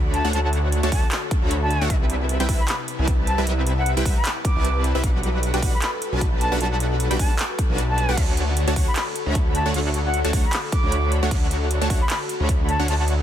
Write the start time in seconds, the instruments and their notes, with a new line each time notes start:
Already playing: detuned saw bass D2, analog synth pad D3 F#4 A4, supersaw synth A3 D4 F#4 C#5 B5
0.13 flute A5, closed hi-hat
0.24 detuned saw bass D2, supersaw synth A3 D4 F#4 C#5 F#5
0.33 detuned saw bass D2, supersaw synth A3 D4 F#4 C#5 F#5, flute A5, closed hi-hat
0.44 flute A5
0.53 closed hi-hat
0.72 closed hi-hat
0.83 detuned saw bass D2, supersaw synth A3 D4 F#4 C#5 A5, closed hi-hat
0.92 detuned saw bass D2, supersaw synth F#4 F#5, flute A5, kick, open hi-hat
1.12 clap, closed hi-hat
1.31 kick, closed hi-hat
1.42 detuned saw bass D2, supersaw synth A3 D4 F#4 C#5 B5
1.51 closed hi-hat
1.62 flute A5
1.71 closed hi-hat
1.81 detuned saw bass D2, supersaw synth A3 D4 F#4 C#5 F#5
1.90 detuned saw bass C2, analog synth pad C3 E4 B4, supersaw synth G3 C4 E4 B4 E5, kick, closed hi-hat
2.10 closed hi-hat
2.29 closed hi-hat
2.40 detuned saw bass C2, supersaw synth G3 C4 E4 B4 G5, closed hi-hat
2.49 detuned saw bass C2, supersaw synth G3 C4 E4 E5, kick, open hi-hat
2.60 flute B5
2.68 flute B5, clap, closed hi-hat
2.88 closed hi-hat
2.99 detuned saw bass C2, supersaw synth G3 C4 E4 B4 A5
3.08 kick, closed hi-hat
3.27 flute A5, closed hi-hat
3.38 detuned saw bass C2, supersaw synth G3 C4 E4 B4 E5
3.47 detuned saw bass C2, supersaw synth G3 C4 E4 B4 E5, closed hi-hat
3.67 closed hi-hat
3.77 flute F#5
3.86 closed hi-hat
3.97 detuned saw bass C2, supersaw synth G3 C4 E4 B4 G5, closed hi-hat
4.05 detuned saw bass C2, supersaw synth C4 E4 B4 E5, kick, open hi-hat
4.16 flute B5
4.25 clap, closed hi-hat
4.44 flute D6, kick, closed hi-hat
4.56 detuned saw bass C2, supersaw synth G3 C4 E4 B4 A5
4.65 closed hi-hat
4.84 closed hi-hat
4.95 detuned saw bass C2, supersaw synth G3 C4 E4 B4 E5
5.04 detuned saw bass B1, supersaw synth G3 D4 F#4 B4, analog synth pad F#4 A4, kick, closed hi-hat
5.23 closed hi-hat
5.43 closed hi-hat
5.54 detuned saw bass B1, supersaw synth G3 D4 F#4 B4 G5, closed hi-hat
5.62 detuned saw bass B1, supersaw synth G3 D4 F#4 B4 F#5, kick, open hi-hat
5.74 flute B5
5.82 flute B5, clap, closed hi-hat
6.02 closed hi-hat
6.12 detuned saw bass B1, supersaw synth G3 D4 F#4 B4 A5
6.21 kick, closed hi-hat
6.41 flute A5, closed hi-hat
6.52 detuned saw bass B1, supersaw synth G3 D4 F#4 B4 F#5
6.60 detuned saw bass B1, supersaw synth G3 D4 F#4 B4 F#5, flute A5, closed hi-hat
6.72 flute A5
6.80 closed hi-hat
7.00 closed hi-hat
7.10 detuned saw bass B1, supersaw synth G3 D4 F#4 B4 G5, closed hi-hat
7.19 detuned saw bass B1, supersaw synth G3 D4 F#4 B4 F#5, flute A5, kick, open hi-hat
7.39 clap, closed hi-hat
7.59 kick, closed hi-hat
7.70 detuned saw bass B1, supersaw synth G3 D4 F#4 B4 A5
7.78 closed hi-hat
7.89 flute A5
7.98 closed hi-hat
8.09 detuned saw bass B1, supersaw synth G3 D4 F#4 B4 F#5
8.17 detuned saw bass D2, analog synth pad D3 A4, supersaw synth D4 C#5, kick, closed hi-hat, crash
8.37 closed hi-hat
8.57 closed hi-hat
8.67 detuned saw bass D2, supersaw synth A3 D4 F#4 C#5 A5, closed hi-hat
8.76 detuned saw bass D2, supersaw synth D4 F#4 C#5 F#5, kick, open hi-hat
8.87 flute B5
8.96 flute B5, clap, closed hi-hat, crash
9.16 closed hi-hat
9.26 detuned saw bass D2, supersaw synth A3 D4 F#4 C#5 B5
9.35 kick, closed hi-hat
9.55 flute A5, closed hi-hat
9.66 detuned saw bass D2, supersaw synth A3 D4 F#4 C#5 F#5
9.74 detuned saw bass D2, supersaw synth A3 D4 F#4 C#5 F#5, closed hi-hat, crash
9.94 closed hi-hat
10.05 flute F#5
10.14 closed hi-hat
10.24 detuned saw bass D2, supersaw synth A3 D4 F#4 C#5 A5, closed hi-hat
10.33 detuned saw bass D2, supersaw synth A3 D4 F#4 F#5, kick, open hi-hat
10.45 flute B5
10.53 clap, closed hi-hat, crash
10.72 flute D6, kick, closed hi-hat
10.83 detuned saw bass D2, supersaw synth A3 D4 F#4 C#5 B5
10.92 closed hi-hat
11.12 closed hi-hat
11.22 detuned saw bass D2, supersaw synth A3 D4 F#4 C#5 F#5
11.31 detuned saw bass D2, kick, closed hi-hat, crash
11.51 closed hi-hat
11.71 closed hi-hat
11.81 detuned saw bass D2, supersaw synth A3 D4 F#4 C#5 A5, closed hi-hat
11.90 detuned saw bass D2, supersaw synth A3 D4 F#4 C#5 F#5, kick, open hi-hat
12.01 flute B5
12.10 flute B5, clap, closed hi-hat, crash
12.29 closed hi-hat
12.40 detuned saw bass D2, supersaw synth A3 D4 F#4 C#5 B5
12.49 kick, closed hi-hat
12.69 flute A5, closed hi-hat
12.79 detuned saw bass D2, supersaw synth A3 D4 F#4 C#5 F#5
12.88 detuned saw bass D2, supersaw synth A3 D4 F#4 C#5 F#5, flute A5, closed hi-hat, crash
12.99 flute A5
13.08 closed hi-hat